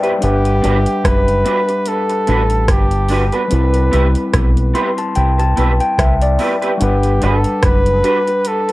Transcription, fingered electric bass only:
0.23 0.60 G1 loud
0.64 0.85 G1 medium
1.05 1.43 F#1 medium
2.29 2.66 A1 medium
2.69 3.29 G1 medium
3.52 3.90 C2 medium
3.93 4.14 C2 medium
4.34 4.72 B1 loud
5.17 5.54 C2 medium
5.58 5.79 B1 medium
5.99 6.37 C2 medium
6.81 7.19 G1 loud
7.23 7.44 G1 medium
7.63 8.01 F#1 medium

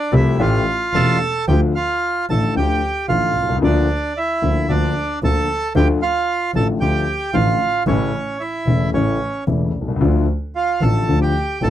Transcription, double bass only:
0.13 0.35 C2 medium
0.39 0.62 A1 medium
0.94 1.17 E1 medium
1.48 1.71 D2 medium
2.30 2.52 A1 medium
2.56 2.78 D2 medium
3.09 3.32 A1 medium
3.36 3.62 C2 soft
3.63 3.85 D2 medium
4.43 4.65 D2 soft
4.69 4.92 D2 medium
5.23 5.45 D2 medium
5.75 5.98 D2 medium
6.54 6.77 A1 medium
6.81 7.03 D2 medium
7.34 7.57 A1 medium
7.87 8.09 A1 medium
8.67 8.90 E1 medium
8.94 9.17 A1 medium
9.48 9.70 E1 medium
9.74 10.00 C2 soft
10.01 10.24 D2 medium
10.81 11.04 A1 medium
11.08 11.31 D2 medium
11.62 11.70 A1 medium

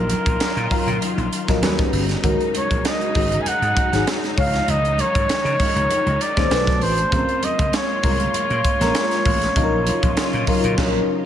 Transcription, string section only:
0.00 1.60 D#3 medium
0.00 1.60 F#3 medium
0.00 1.60 F4 medium
1.62 2.22 C#3 medium
1.62 2.23 G3 medium
1.62 2.23 B3 medium
1.62 6.47 D#4 medium
2.23 4.35 C#3 medium
2.23 4.35 F#3 medium
2.23 4.35 G#3 medium
4.37 7.09 D#3 medium
4.37 6.49 F3 medium
4.37 6.49 G#3 medium
6.53 7.12 B2 medium
6.53 7.12 A3 medium
6.53 7.12 D4 medium
7.13 9.54 G#3 medium
7.13 9.54 A#3 medium
7.13 9.54 F4 medium
9.57 11.26 C#3 medium
9.57 11.26 F#3 medium
9.57 11.26 D#4 medium
9.57 11.26 F4 medium

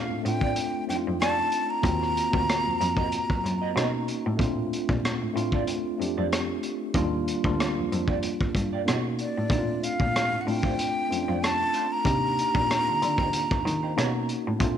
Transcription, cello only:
0.11 0.21 A2 soft
0.25 0.54 A2 medium
0.89 1.02 F2 soft
1.07 1.20 F2 medium
1.84 2.13 D#2 medium
2.34 2.47 D2 medium
2.66 2.76 F2 soft
2.81 3.09 F2 medium
3.31 3.41 F#2 soft
3.44 3.73 F#2 medium
3.76 4.05 B2 medium
4.26 4.39 A2 medium
4.40 4.68 A#2 medium
4.90 5.02 A#2 medium
5.22 5.32 A2 soft
5.36 5.65 A2 medium
6.00 6.13 F2 soft
6.18 6.30 F2 medium
6.95 7.24 D#2 medium
7.45 7.57 D2 medium
7.78 7.88 F2 soft
7.93 8.20 F2 medium
8.42 8.51 G2 soft
8.55 8.84 G2 medium
8.88 9.16 B2 medium
9.38 9.50 A2 medium
9.51 9.79 A#2 medium
10.01 10.13 A#2 medium
10.33 10.43 A2 soft
10.47 10.75 A2 medium
11.11 11.23 F2 soft
11.28 11.41 F2 medium
12.06 12.34 C3 medium
12.56 12.68 A#2 medium
12.88 12.98 D3 soft
13.02 13.30 D3 medium
13.52 13.62 D#3 soft
13.66 13.97 D#3 medium
13.98 14.26 B2 loud
14.48 14.60 A2 medium
14.61 14.78 A#2 loud

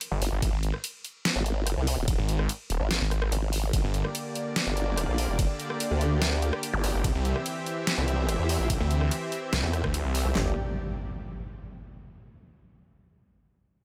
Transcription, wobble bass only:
0.22 0.31 G1 loud
0.42 0.51 G#1 loud
1.36 1.75 G#1 loud
1.77 1.96 C2 loud
1.98 2.17 D#1 loud
2.81 3.00 G#1 loud
3.32 3.72 G#1 loud
3.73 3.82 G1 loud
4.67 5.06 G1 loud
5.08 5.27 A#1 loud
5.29 5.48 F1 medium
5.91 6.51 D2 loud
6.84 6.93 G1 loud
7.04 7.13 C2 loud
7.98 8.37 C2 loud
8.39 8.58 E2 loud
8.60 8.79 A#1 loud
9.63 9.82 E2 loud
10.25 10.34 C2 loud
10.35 10.55 G1 loud

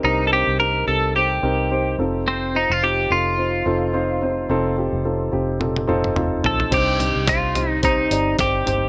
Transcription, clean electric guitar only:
0.05 0.25 D#4 medium
0.27 0.33 A4 medium
0.33 0.59 G4 medium
0.60 0.87 A#4 medium
0.88 1.16 A4 medium
1.16 1.95 G4 medium
2.28 2.56 C4 medium
2.56 2.72 D#4 medium
2.72 2.83 F4 medium
2.84 3.12 G4 medium
3.12 6.13 F4 medium
6.46 6.74 A4 medium
6.74 7.30 G4 medium
7.29 7.69 F4 medium
7.69 7.80 D#4 medium
7.85 8.36 D#4 medium
8.40 8.89 G4 medium

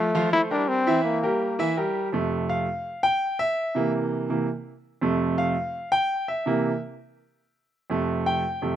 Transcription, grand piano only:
0.15 0.30 F3 loud
0.15 0.30 F4 medium
0.15 0.30 F5 medium
0.33 0.48 A3 medium
0.33 0.48 A4 medium
0.33 0.48 C5 medium
0.51 0.80 G3 medium
0.51 0.81 G4 medium
0.51 0.81 A#4 medium
0.87 1.16 E3 loud
0.87 1.17 E4 medium
0.87 1.17 E5 medium
1.23 1.53 G3 medium
1.23 1.53 G4 medium
1.23 1.53 A#4 medium
1.59 1.74 E3 loud
1.59 1.74 E4 medium
1.59 1.74 E5 loud
1.77 2.07 G3 medium
1.77 2.07 G4 medium
1.77 2.07 A#4 medium
2.12 2.64 F2 medium
2.12 2.65 C3 medium
2.12 2.65 A3 medium
2.49 3.00 F5 medium
3.03 3.37 G5 loud
3.39 3.90 E5 loud
3.75 4.27 C3 medium
3.75 4.27 E3 medium
3.75 4.27 A#3 medium
4.30 4.46 C3 medium
4.30 4.46 E3 soft
4.30 4.46 A#3 medium
5.01 5.53 F2 medium
5.01 5.53 C3 medium
5.01 5.54 A3 medium
5.38 5.88 F5 medium
5.92 6.25 G5 loud
6.28 6.78 E5 medium
6.46 6.70 C3 medium
6.46 6.70 E3 medium
6.46 6.71 A#3 medium
7.90 8.41 F2 medium
7.90 8.42 C3 medium
7.90 8.42 A3 medium
8.26 8.76 G5 medium
8.62 8.76 F2 medium
8.62 8.76 C3 medium
8.62 8.76 A3 medium

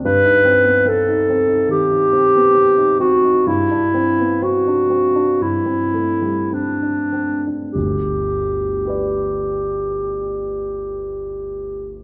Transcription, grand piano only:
0.05 1.65 G2 soft
0.24 0.57 D#4 soft
0.45 0.78 C4 soft
0.64 0.85 B3 soft
0.85 1.19 C4 soft
1.08 1.41 D#4 soft
1.30 1.62 C4 soft
1.48 1.81 D#4 soft
1.68 2.02 D#3 soft
1.91 2.24 D#4 soft
2.13 2.47 C4 soft
2.36 2.56 B3 soft
2.55 2.91 C4 soft
2.78 3.14 D#4 soft
3.00 3.37 C4 soft
3.24 3.47 D#4 soft
3.47 5.37 G2 soft
3.71 4.09 D4 soft
3.94 4.33 C4 soft
4.20 4.43 B3 soft
4.42 4.81 C4 soft
4.67 5.06 D4 soft
4.90 5.31 C4 soft
5.15 5.57 D4 soft
5.41 7.70 G2 soft
5.66 6.11 C4 soft
5.94 6.40 A3 soft
6.22 6.52 G3 soft
6.52 7.02 C4 soft
6.83 7.34 D4 soft
7.13 7.62 C4 soft
7.47 7.74 D4 soft
7.75 12.02 G1 soft
7.75 12.01 D2 soft
8.85 12.04 G4 soft
8.85 12.04 B4 soft
8.89 12.04 D5 soft

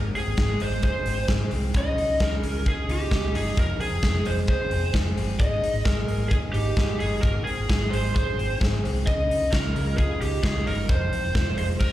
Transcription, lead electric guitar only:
0.16 0.62 G#4 medium
0.62 0.83 C5 medium
0.84 1.26 C5 medium
1.77 2.23 D#5 loud
2.23 2.64 A#4 medium
2.69 2.91 G#4 medium
2.92 3.35 G4 medium
3.36 3.58 G#4 medium
3.60 3.81 A#4 medium
3.81 4.28 G#4 medium
4.26 4.32 C5 medium
4.50 4.92 C5 medium
5.40 5.83 D#5 medium
5.85 6.28 A#4 medium
6.29 6.35 G#4 medium
6.53 7.00 G4 medium
7.00 7.21 G#4 medium
7.22 7.44 A#4 medium
7.44 7.92 G#4 medium
7.90 8.14 C5 medium
8.15 8.58 C5 medium
9.07 9.54 D#5 loud
9.52 9.97 A#4 medium
9.97 10.21 G#4 medium
10.21 10.43 G4 medium
10.43 10.67 G#4 medium
10.68 10.91 A#4 medium
10.90 11.57 C5 medium
11.58 11.64 C5 medium
11.81 11.92 A#4 medium

